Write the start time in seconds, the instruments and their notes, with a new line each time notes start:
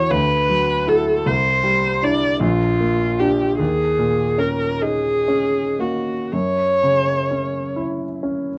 Already playing: grand piano E2 E3 E4 F#4, viola C#5
0.11 grand piano D2, viola B4
0.49 grand piano F#3
0.87 grand piano E4 F#4, viola A4
1.26 grand piano C2, viola C5
1.64 grand piano G3
2.02 grand piano D4 E4, viola D5
2.40 grand piano A#1, viola F4
2.80 grand piano A#3
3.19 grand piano D4 F4, viola G4
3.58 grand piano D#2, viola G#4
3.98 grand piano A#2
4.38 grand piano C#4, viola A#4
4.82 grand piano D#4, viola G#4
5.28 grand piano C#4
5.79 grand piano A#3, viola F#4
6.32 grand piano F#2, viola C#5
6.83 grand piano C#3
7.31 grand piano C#4
7.76 grand piano E4
8.23 grand piano C#4